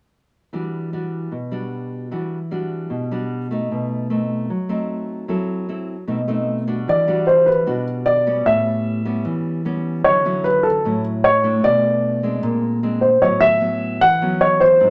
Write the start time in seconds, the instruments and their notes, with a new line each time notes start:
0.53 nylon-string guitar E3 G3 D4 F#4
0.93 nylon-string guitar G3 D4 F#4
1.32 nylon-string guitar B2
1.51 nylon-string guitar G3 D4 F#4
2.11 nylon-string guitar E3 G3 D4 F#4
2.51 nylon-string guitar G3 D4 F#4
2.90 nylon-string guitar B2
3.11 nylon-string guitar G3 D4 F#4
3.51 nylon-string guitar A3 D#4
3.71 nylon-string guitar B2
4.10 nylon-string guitar A3 C4 D#4
4.50 nylon-string guitar F#3
4.69 nylon-string guitar A3 C4 D#4
5.28 nylon-string guitar F#3 C4 E4 A4
5.69 nylon-string guitar C4 E4 A4
6.07 nylon-string guitar B2 A3 C4 D#4
6.28 nylon-string guitar A3 C4 D#4
6.67 nylon-string guitar G3 D4 F#4
6.88 nylon-string guitar E3, grand piano D5
7.07 nylon-string guitar G3 D4 F#4
7.27 grand piano C5
7.46 grand piano B4
7.66 nylon-string guitar B2 G3 D4 F#4
8.06 grand piano D5
8.27 nylon-string guitar G3 B3 C#4
8.45 nylon-string guitar A2, grand piano E5
9.05 nylon-string guitar G3 B3 C#4
9.25 nylon-string guitar E3
9.65 nylon-string guitar G3 B3 C#4
10.04 nylon-string guitar D3 F#3 C#4 E4, grand piano C#5
10.25 nylon-string guitar F#3 C#4 E4
10.44 grand piano B4
10.63 grand piano A4
10.85 nylon-string guitar A2 F#3 C#4 E4
11.24 grand piano C#5
11.43 nylon-string guitar A3 D4 E4
11.64 nylon-string guitar B2, grand piano D5
12.23 nylon-string guitar G#3 C4 D4
12.43 nylon-string guitar A#2
12.83 nylon-string guitar G#3 C4 D4
13.01 grand piano C5
13.21 nylon-string guitar A2 F#3 B3 C#4, grand piano C#5
13.41 grand piano E5
13.61 nylon-string guitar F#3 B3 C#4
14.01 nylon-string guitar E3, grand piano F#5
14.22 nylon-string guitar F#3 B3 C#4
14.41 grand piano C#5
14.60 grand piano C5
14.80 nylon-string guitar G#2 F#3 C4 D4